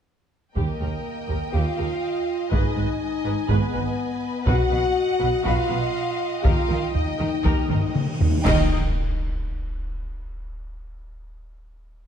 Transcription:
0.56 0.65 D#2 soft
0.56 0.65 D#2 medium
0.56 1.26 D#3 soft
0.56 1.50 A#3 medium
0.56 0.79 G4 medium
0.56 1.51 A#4 medium
0.56 4.43 D#5 soft
0.56 2.48 G5 soft
0.56 taiko soft
0.81 0.89 D#2 soft
0.81 0.89 G4 soft
0.81 0.89 A#4 soft
1.29 1.37 D#2 soft
1.29 1.38 D#2 soft
1.29 1.37 G4 soft
1.29 1.37 A#4 soft
1.29 taiko soft
1.53 1.62 D#2 soft
1.53 1.62 D#2 medium
1.53 2.52 F4 medium
1.53 1.77 G4 medium
1.53 2.52 F5 medium
1.78 1.87 D#2 soft
1.78 1.86 G4 soft
1.78 1.86 A#4 soft
2.51 2.60 G#1 medium
2.51 2.60 G#2 medium
2.51 2.98 D#4 medium
2.51 2.75 G#4 medium
2.51 2.75 B4 medium
2.51 2.99 D#5 medium
2.51 4.43 G#5 soft
2.51 taiko medium
2.76 2.84 G#1 soft
2.76 2.84 G#2 soft
2.76 2.84 B4 soft
3.00 3.48 D#4 medium
3.00 3.48 D#5 medium
3.24 3.33 G#1 soft
3.24 3.33 G#2 soft
3.24 3.33 B4 soft
3.48 3.58 G#1 medium
3.48 3.57 G#2 medium
3.48 4.45 B3 medium
3.48 3.72 G#4 medium
3.48 4.45 B4 medium
3.48 3.72 B4 medium
3.48 taiko medium
3.73 3.82 G#1 medium
3.73 3.82 G#2 medium
3.73 3.81 B4 soft
4.46 4.55 B1 medium
4.46 4.55 B2 medium
4.46 4.70 F#4 medium
4.46 5.44 F#4 loud
4.46 4.70 B4 medium
4.46 8.21 D#5 medium
4.46 5.45 F#5 medium
4.46 6.40 F#5 medium
4.46 taiko medium
4.71 4.80 B1 medium
4.71 4.79 B2 medium
4.71 4.79 B4 medium
5.20 5.29 B1 soft
5.20 5.29 B2 medium
5.20 5.28 B4 medium
5.44 5.53 B1 medium
5.44 5.53 B2 medium
5.44 6.43 F4 loud
5.44 5.68 F#4 medium
5.44 5.67 B4 medium
5.44 6.42 F5 medium
5.44 taiko medium
5.69 5.78 B1 medium
5.69 5.78 B2 soft
5.69 5.77 B4 medium
6.44 6.53 D#2 medium
6.44 6.53 D#3 medium
6.44 6.94 F4 medium
6.44 6.67 G4 medium
6.44 6.67 A#4 medium
6.44 6.93 F5 medium
6.44 8.25 G5 soft
6.44 taiko medium
6.44 cymbal swell medium
6.52 6.59 D#3 soft
6.60 6.66 D#3 soft
6.67 6.77 D#2 soft
6.67 6.74 D#3 soft
6.67 6.78 D#3 medium
6.67 6.77 A#4 medium
6.75 6.81 D#3 soft
6.82 6.89 D#3 soft
6.90 6.97 D#3 soft
6.90 7.95 D#4 medium
6.95 7.05 D#3 soft
6.95 7.93 D#5 medium
6.95 taiko low medium
7.06 7.12 D#3 soft
7.13 7.19 D#3 soft
7.19 7.28 D#2 soft
7.19 7.28 D#3 medium
7.19 7.28 D#3 soft
7.19 7.27 A#4 soft
7.29 7.35 D#3 soft
7.36 7.43 D#3 medium
7.44 7.52 D#2 medium
7.44 7.52 D#3 medium
7.44 7.51 D#3 medium
7.44 7.68 G4 medium
7.44 7.68 A#4 medium
7.44 taiko medium
7.52 7.58 D#3 soft
7.60 7.67 D#3 medium
7.68 7.78 D#2 medium
7.68 7.74 D#3 medium
7.68 7.78 D#3 soft
7.68 7.78 A#4 soft
7.68 taiko low-mid medium
7.75 7.83 D#3 medium
7.84 7.90 D#3 medium
7.92 7.98 D#3 medium
7.92 taiko mid medium
7.99 8.05 D#3 medium
8.06 8.13 D#3 medium
8.14 8.21 D#3 medium
8.20 8.29 D#3 medium
8.20 taiko low loud
8.30 8.36 D#3 medium
8.37 8.44 D#3 medium
8.44 8.75 D#2 medium
8.44 8.69 D#3 medium
8.44 8.74 D#3 medium
8.44 8.66 D#4 medium
8.44 8.75 A#4 medium
8.44 8.74 D#5 medium
8.44 8.75 D#5 medium
8.44 8.74 G5 medium
8.44 concert bass drum medium
8.44 taiko medium
8.44 crash medium
8.44 impact medium

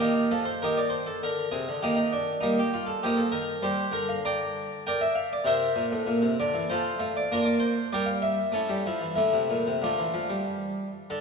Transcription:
0.00 0.22 D#3 medium
0.00 0.30 A#3 medium
0.00 0.30 D#4 medium
0.00 0.27 G4 medium
0.31 0.54 F3 soft
0.31 0.47 A4 medium
0.45 0.62 C5 medium
0.62 1.06 D#3 medium
0.62 0.77 D#4 medium
0.62 0.78 G4 medium
0.62 0.78 A#4 medium
0.77 0.93 D5 medium
0.90 1.06 C5 medium
1.07 1.22 A4 medium
1.23 1.45 D3 soft
1.23 1.53 A#4 medium
1.52 1.66 C3 soft
1.52 1.82 G#4 medium
1.68 1.82 D3 soft
1.83 2.69 D#3 medium
1.83 1.97 A#3 medium
1.83 1.95 D#4 medium
1.83 1.98 G4 medium
1.96 2.12 D#4 medium
2.13 2.38 D4 medium
2.41 2.57 G3 medium
2.41 2.57 A#3 medium
2.41 2.57 D#4 medium
2.59 2.74 G4 medium
2.74 2.88 F4 medium
2.87 3.02 A4 medium
3.03 3.25 F3 soft
3.03 3.18 A#3 medium
3.03 3.18 D#4 medium
3.03 3.18 G4 medium
3.17 3.33 A4 medium
3.32 3.54 D#3 medium
3.32 3.63 A#4 medium
3.62 3.85 G3 medium
3.62 3.92 G4 medium
3.62 3.94 C5 loud
3.92 5.03 D3 medium
3.92 4.09 A#4 medium
4.09 4.25 F5 medium
4.25 4.82 D5 medium
4.25 4.83 G5 medium
4.25 4.86 A#5 loud
4.87 5.01 A#4 medium
4.87 5.01 D5 medium
4.87 5.02 G5 medium
5.01 5.16 E5 medium
5.15 5.31 F5 medium
5.33 5.47 D5 medium
5.45 5.67 C3 medium
5.45 6.34 A#4 medium
5.45 6.34 C5 medium
5.45 6.38 E5 loud
5.76 5.91 A#2 medium
5.92 6.07 A2 medium
6.07 6.22 A#2 medium
6.22 6.37 C3 medium
6.40 6.53 D3 medium
6.40 6.69 D5 medium
6.54 6.68 E3 medium
6.70 6.91 F3 medium
6.70 6.98 F4 medium
6.70 6.98 A4 medium
6.70 6.99 C5 medium
6.99 7.21 A3 medium
6.99 7.15 F5 loud
7.17 7.30 D5 medium
7.32 7.75 A#3 medium
7.32 7.46 D4 medium
7.32 7.46 F4 medium
7.32 7.46 A#4 loud
7.45 7.60 D5 medium
7.60 7.86 C5 medium
7.93 8.37 G3 medium
7.93 8.07 G4 medium
7.93 8.07 A#4 medium
7.93 8.07 D5 medium
8.06 8.22 F5 medium
8.22 8.49 E5 medium
8.52 8.67 A3 soft
8.52 8.83 C#4 medium
8.52 8.83 E4 soft
8.52 8.85 A4 medium
8.69 8.84 G3 medium
8.86 9.01 F3 medium
8.86 9.13 E4 medium
9.02 9.17 E3 soft
9.16 9.32 D3 medium
9.16 9.78 A3 medium
9.16 9.81 E4 medium
9.33 9.49 C3 soft
9.50 9.65 A#2 soft
9.67 9.82 C3 soft
9.82 9.97 D3 soft
9.82 10.13 F3 soft
9.82 10.43 A3 soft
9.82 10.47 D4 medium
9.98 10.13 E3 soft
10.14 10.29 F3 medium
10.30 10.88 G3 soft
11.10 11.21 D3 medium
11.10 11.21 A4 medium

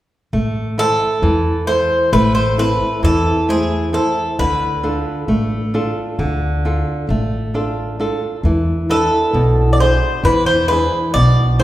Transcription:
0.33 0.96 A1 medium
0.33 1.20 A3 medium
0.78 1.50 E4 soft
0.78 1.50 A4 soft
0.78 1.65 A4 medium
0.78 1.50 C5 soft
1.22 1.85 E2 medium
1.22 2.10 E3 medium
1.67 2.40 E4 soft
1.67 2.40 A4 soft
1.67 2.09 C5 medium
1.67 2.40 C5 medium
2.13 2.76 A1 loud
2.13 3.00 A3 medium
2.13 2.34 B4 medium
2.35 2.56 C5 medium
2.58 3.31 C4 medium
2.58 3.30 E4 soft
2.58 3.30 A4 soft
2.58 3.00 B4 medium
3.03 3.97 E2 medium
3.03 3.90 E3 medium
3.03 3.46 A4 medium
3.49 4.20 A3 soft
3.49 3.92 E4 soft
3.49 3.91 G#4 medium
3.49 3.92 C5 soft
3.93 4.29 E4 soft
3.93 4.29 A4 soft
3.93 4.35 A4 medium
3.93 4.29 C5 soft
4.39 5.02 D2 medium
4.39 5.26 D3 medium
4.39 6.15 B4 medium
4.83 5.55 D4 soft
4.83 5.56 F4 soft
4.83 5.56 A4 soft
5.28 5.91 A1 medium
5.28 6.16 A3 medium
5.74 6.46 D4 soft
5.74 6.46 F4 soft
5.74 6.46 A4 medium
6.19 6.82 D2 medium
6.19 7.06 D3 medium
6.65 7.36 D4 soft
6.65 7.37 F4 soft
6.65 7.37 A4 soft
7.09 8.03 A1 medium
7.09 7.97 A3 medium
7.54 7.98 D4 soft
7.54 7.98 F4 soft
7.54 7.99 A4 soft
8.00 8.35 D4 soft
8.00 8.35 F4 soft
8.00 8.36 A4 medium
8.43 9.07 E2 medium
8.43 9.32 E3 medium
8.89 9.61 D4 soft
8.89 9.61 E4 soft
8.89 9.69 A4 medium
8.89 9.62 B4 medium
9.33 9.97 B1 medium
9.33 10.21 B2 medium
9.73 9.79 D5 medium
9.79 10.51 D4 soft
9.79 10.51 E4 soft
9.79 10.52 G#4 soft
9.79 10.22 C5 medium
10.24 10.87 E2 medium
10.24 11.12 E3 medium
10.24 10.45 B4 medium
10.46 10.67 C5 medium
10.68 11.42 D4 soft
10.68 11.42 E4 soft
10.68 11.42 G#4 soft
10.68 11.11 B4 medium
11.14 11.63 B1 medium
11.14 11.63 B2 medium
11.14 11.56 D5 loud
11.59 11.63 D4 soft
11.59 11.63 E4 soft
11.59 11.63 G#4 soft
11.59 11.63 C5 medium

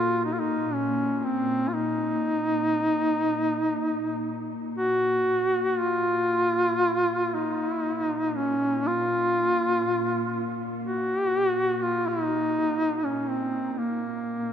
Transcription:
0.00 5.29 A#2 medium
0.00 0.22 F4 loud
0.25 0.35 D#4 medium
0.33 0.41 F4 medium
0.39 0.75 D#4 medium
0.73 1.18 C#4 medium
1.18 1.26 C#4 medium
1.24 1.70 C4 medium
1.68 1.75 F4 medium
1.74 4.51 D#4 loud
4.77 5.81 F#4 loud
5.30 14.53 A#2 soft
5.80 7.35 F4 loud
7.34 8.38 D#4 medium
8.36 8.89 C#4 medium
8.87 10.59 F4 loud
10.84 11.84 F#4 loud
11.82 12.10 F4 medium
12.08 13.05 D#4 loud
13.04 13.31 C#4 medium
13.29 13.72 C4 medium
13.72 13.80 C4 medium
13.79 14.53 A#3 medium

